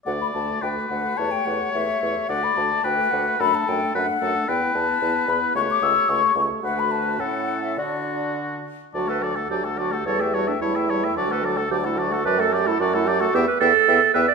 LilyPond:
<<
  \new Staff \with { instrumentName = "Flute" } { \time 2/4 \key d \major \tempo 4 = 109 fis''16 b''16 a''8 g''8 fis''8 | a''16 g''16 fis''8 e''4 | fis''16 b''16 a''8 g''8 fis''8 | b''16 a''16 g''8 fis''4 |
g''8 a''4 b''8 | cis'''16 d'''16 e'''8 cis'''8. r16 | fis''16 b''16 a''8 fis''8. e''16 | d''4 r4 |
a''16 fis''16 a''16 fis''16 a''16 fis''16 a''16 fis''16 | a''16 g''16 a''16 g''16 a''16 g''16 a''16 g''16 | a''16 fis''16 a''16 fis''16 a''16 fis''16 a''16 fis''16 | a''16 fis''16 a''16 fis''16 a''16 fis''16 a''16 fis''16 |
g''8 g''8 g''8 g''8 | }
  \new Staff \with { instrumentName = "Oboe" } { \time 2/4 \key d \major d''4 b'4 | cis''2 | d''4 b'4 | a'4 b'8 a'8 |
b'2 | cis''4. r8 | b'4 a'4 | fis'4. r8 |
d''16 a'16 d''16 a'16 d''16 a'16 d''16 a'16 | cis''16 e''16 cis''16 e''16 cis''16 e''16 cis''16 e''16 | d''16 a'16 d''16 a'16 d''16 a'16 d''16 a'16 | d''16 a'16 d''16 a'16 d''16 a'16 d''16 a'16 |
e''8 e''8 e''8 e''8 | }
  \new Staff \with { instrumentName = "Clarinet" } { \time 2/4 \key d \major fis'8 fis'8 fis'8 fis'8 | g'8 g'8 g'8 g'8 | fis'8 fis'8 fis'8 fis'8 | d'8 d'8 d'8 d'8 |
e'8 e'8 e'8 e'8 | g'8 g'8 g'8 g'8 | fis'4 e'4 | fis'4. r8 |
fis'16 b'16 a'8 g'8 fis'16 g'16 | a'16 g'16 fis'16 d'16 e'4 | fis'16 b'16 a'8 g'16 e'16 fis'8 | b'16 a'16 g'16 e'16 fis'16 e'16 g'16 fis'16 |
g'16 b'16 a'4 b'16 d''16 | }
  \new Staff \with { instrumentName = "French horn" } { \time 2/4 \key d \major a8 a8 a8 a8 | a8 a8 a8 a8 | a8 a8 a8 a8 | a8 a8 a8 a8 |
b8 b8 b8 b8 | a8 a8 a8 a8 | a4 cis'4 | d'4. r8 |
fis16 a16 fis16 a16 fis16 a16 fis16 a16 | g16 a16 g16 a16 g16 a16 g16 a16 | fis16 a16 fis16 a16 fis16 a16 fis16 a16 | fis16 a16 fis16 a16 fis16 a16 fis16 a16 |
b8 b8 b8 b8 | }
  \new Staff \with { instrumentName = "Bassoon" } { \clef bass \time 2/4 \key d \major d,8 d,8 d,8 d,8 | e,8 e,8 e,8 e,8 | d,8 d,8 d,8 d,8 | fis,8 fis,8 fis,8 fis,8 |
e,8 e,8 e,8 e,8 | cis,8 cis,8 cis,8 cis,8 | d,4 a,4 | d4. r8 |
d,4 d,4 | e,4 e,4 | d,4 d,4 | fis,4 fis,4 |
e,8 e,8 e,8 e,8 | }
>>